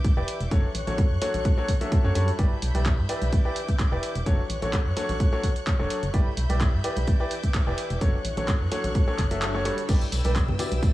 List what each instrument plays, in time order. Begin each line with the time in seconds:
Already playing: ambient pad D4 B4 E5 G5, string section E5 D6 G6
0.04 kick, closed hi-hat
0.17 fm bass E1, grand piano E3 E4 G4 B4 D5
0.28 open hi-hat
0.40 fm bass E1, closed hi-hat
0.51 fm bass F#1, grand piano F#3 D4 F#4 A4 C#5, string section C#5 C#6 F#6, kick, closed hi-hat
0.75 fm bass A1, open hi-hat
0.87 fm bass A1, grand piano F#3 D4 F#4 A4 C#5, closed hi-hat
0.97 ambient pad A4, kick, closed hi-hat
1.01 ambient pad C#6
1.11 fm bass F#2
1.22 grand piano F#3 D4 F#4 A4 C#5, open hi-hat
1.34 fm bass A1, closed hi-hat
1.45 kick, closed hi-hat
1.58 grand piano F#3 D4 F#4 A4 C#5
1.68 kick, open hi-hat
1.81 grand piano F#3 D4 F#4 A4 E5, closed hi-hat
1.92 kick, closed hi-hat
2.04 fm bass F#2, grand piano F#3 D4 F#4 A4 C#5
2.15 fm bass F#2, grand piano G3 D4 F#4 A4 C#5, open hi-hat
2.28 closed hi-hat
2.39 fm bass G1, grand piano G3 E4 G4 B4 D5, string section E5 B5 G6, kick, closed hi-hat
2.61 fm bass B1, ambient pad B4, open hi-hat
2.75 fm bass B1, grand piano G3 E4 G4 B4 D5, closed hi-hat
2.81 ambient pad E5 G5
2.86 kick, clap, closed hi-hat
2.98 fm bass G2
3.09 grand piano E3 E4 G4 B4 D5, open hi-hat
3.22 fm bass B1, closed hi-hat
3.33 string section D6, kick, closed hi-hat
3.45 grand piano E3 E4 G4 B4 D5
3.56 open hi-hat
3.68 kick, closed hi-hat
3.79 kick, clap, closed hi-hat
3.92 fm bass E1, grand piano E3 E4 G4 B4 D5
4.03 open hi-hat
4.15 fm bass E1, closed hi-hat
4.26 fm bass F#1, grand piano F#3 D4 F#4 A4 C#5, string section C#5 C#6 F#6, kick, closed hi-hat
4.38 ambient pad A4
4.50 fm bass A1, open hi-hat
4.62 fm bass A1, grand piano F#3 D4 F#4 A4 C#5, closed hi-hat
4.73 kick, clap, closed hi-hat
4.86 fm bass F#2
4.97 grand piano F#3 D4 F#4 A4 C#5, open hi-hat
5.09 fm bass A1, closed hi-hat
5.20 kick, closed hi-hat
5.33 grand piano F#3 D4 F#4 A4 C#5
5.43 kick, open hi-hat
5.56 closed hi-hat
5.67 kick, clap, closed hi-hat
5.79 fm bass E1, grand piano F#3 D4 F#4 A4 C#5
5.90 open hi-hat
6.03 fm bass F#1, closed hi-hat
6.14 fm bass G1, grand piano G3 E4 G4 B4 D5, ambient pad E4, string section E5 B5 G6, kick, closed hi-hat
6.28 ambient pad B4
6.37 fm bass B1, open hi-hat
6.46 fm bass B1, grand piano G3 E4 G4 B4 D5, ambient pad G5, closed hi-hat
6.56 ambient pad D5
6.61 kick, clap, closed hi-hat
6.73 fm bass G2
6.84 grand piano E3 E4 G4 B4 D5, open hi-hat
6.97 fm bass B1, closed hi-hat
7.07 string section D6, kick, closed hi-hat
7.20 grand piano E3 E4 G4 B4 D5
7.31 open hi-hat
7.43 kick, closed hi-hat
7.54 kick, clap, closed hi-hat
7.67 fm bass E1, grand piano E3 E4 G4 B4 D5
7.78 open hi-hat
7.90 fm bass E1, closed hi-hat
8.01 fm bass F#1, grand piano F#3 D4 F#4 A4 C#5, ambient pad D4, string section C#5 C#6 F#6, kick, closed hi-hat
8.15 ambient pad A4
8.25 fm bass A1, open hi-hat
8.37 fm bass A1, grand piano F#3 D4 F#4 A4 C#5, closed hi-hat
8.48 kick, clap, closed hi-hat
8.61 fm bass F#2
8.72 grand piano F#3 D4 F#4 A4 C#5, open hi-hat
8.84 fm bass A1, closed hi-hat
8.95 kick, closed hi-hat
9.08 grand piano F#3 D4 F#4 A4 C#5
9.18 fm bass F#1, kick, clap, open hi-hat
9.31 grand piano F#3 D4 F#4 A4 E5, closed hi-hat
9.42 clap, closed hi-hat
9.54 grand piano F#3 D4 F#4 A4 C#5
9.65 grand piano G3 D4 F#4 A4 C#5, open hi-hat
9.78 closed hi-hat
9.89 fm bass G1, grand piano G3 E4 G4 B4 D5, ambient pad E4, string section B4 G5 E6, kick, closed hi-hat, crash, tambourine
10.01 tambourine
10.12 fm bass B1, open hi-hat, tambourine
10.24 fm bass B1, grand piano G3 E4 G4 B4 D5, synth pluck B4, closed hi-hat, tambourine
10.35 kick, clap, closed hi-hat, tambourine
10.48 fm bass G2, high conga
10.59 grand piano E3 E4 G4 B4 D5, synth pluck F#4, open hi-hat, tambourine, high conga
10.71 fm bass B1, closed hi-hat, tambourine
10.83 synth pluck F#4, string section D5, kick, closed hi-hat, tambourine